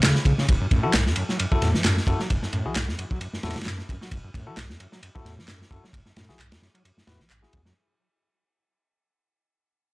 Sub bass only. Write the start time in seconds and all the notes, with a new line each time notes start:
0.03 C#3
0.25 C#3
0.49 F#1
0.71 F#2
0.94 B1
1.07 F#2
1.62 E2
1.75 F#2
1.85 F#2
2.07 F#2
2.30 F#1
2.53 F#2
2.66 B1
2.75 B1
2.88 F#2
3.44 E2
3.56 F#2
3.67 F#2
3.89 F#2
4.12 F#1
4.34 F#2
4.57 B1
4.70 F#2
5.25 E2
5.38 F#2
5.48 F#2
5.71 F#2
5.93 F#1
6.16 F#2
6.29 B1
6.39 B1
6.52 F#2
7.07 E2
7.20 A1
7.30 A1
7.54 E2
7.65 F#2